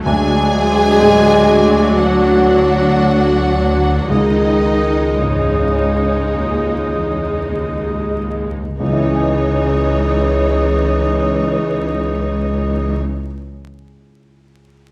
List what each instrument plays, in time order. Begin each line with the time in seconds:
0.05 double bass section D2, grand piano D2, cello section D2, viola section F#3 D4, french horn section G#3, clarinet F#4, violin section G#4 G#5, cor anglais D5
1.01 grand piano A2
2.00 french horn section F#3, violin section F#4 F#5
4.10 double bass section C#2, cello section C#2, grand piano C#2, french horn section D#3, viola section G#3 D#4, violin section D#4 D#5, clarinet G#4, cor anglais D#5
5.21 cello section E2, grand piano G#2, french horn section C#3, violin section C#4 C#5
5.78 cello section C#2
6.36 cello section D#2
6.95 cello section E2
7.55 cello section D#2
8.17 cello section D#2
8.79 cello section C#2, double bass section C#2, grand piano C#2, viola section E3 D#4, french horn section C#4, clarinet G#4, violin section C#5, cor anglais D#5
8.87 grand piano C#3
8.93 grand piano E4
9.00 grand piano G#4
9.08 grand piano D#5
9.15 grand piano G#5